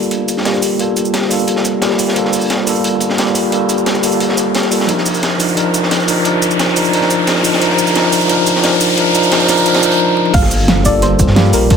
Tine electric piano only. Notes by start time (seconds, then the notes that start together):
Already playing: G3 A#3 F4 A4
0.45 G3 A#3 F4 G4
0.78 G3 A#3 F4
0.82 A4
1.29 G3 A#3 F4
1.33 A4
1.81 G3 A#3 F4 G4
2.14 G3 A#3 F4
2.18 A4
2.65 G3 A#3 F4
2.69 A4
3.17 G3 A#3 F4 G4
3.50 G3 A#3 F4
3.54 A4
4.02 G3 A#3 F4
4.06 A4
4.71 G3 A#3 F4 A4
4.87 F3 D4 D#4
4.91 A#4
5.38 F3 D4 D#4
5.42 A#4
5.55 F3 D4 D#4
5.59 A#4
6.06 F3 D4 D#4
6.10 A#4
6.23 F3 D4 D#4
6.27 A#4
6.74 F3 D4 D#4
6.79 A#4
6.91 F3 D4 D#4
6.96 A#4
7.42 F3 D4 D#4
7.47 A#4
7.60 F3 D4 D#4
7.64 A#4
7.94 F3 D4 D#4
7.98 A#4
8.28 F3 D4 D#4
8.32 A#4
8.62 F3 D4 D#4
8.66 A#4
8.96 F3 D4 D#4
9.00 A#4
9.13 F3 D4 D#4
9.17 A#4
9.30 F3 D4 D#4
9.34 A#4
9.47 F3 D4 D#4
9.51 A#4
9.64 F3 D4 D#4
9.68 A#4
9.81 F3 D4 D#4
9.86 A#4
10.33 G3 A#3
10.37 A4
10.83 G3 A#3 F4
10.88 A4
11.35 G3 A#3 F4 G4
11.69 G3 A#3 F4
11.73 A5